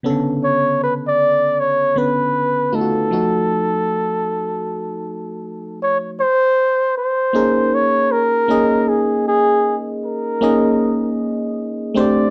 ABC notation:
X:1
M:4/4
L:1/16
Q:"Swing 16ths" 1/4=78
K:Fphr
V:1 name="Flugelhorn"
z2 ^c2 =B =d3 c2 B4 =A2- | =A12- A2 d2 | [K:Bbdor] c4 c4 d2 B4 A2 | A3 z B6 z4 =d2 |]
V:2 name="FM electric piano"
[^C,=D,=B,^C=A]2 z8 [D,B,C=B]2 z2 [=A,EF^F]2 | [F,=A,EG]2 z12 z2 | [K:Bbdor] z6 [B,DEAB]6 [B,DEAe]2 z2 | z6 [B,DEAe]6 z2 [=A,C=DGc]2 |]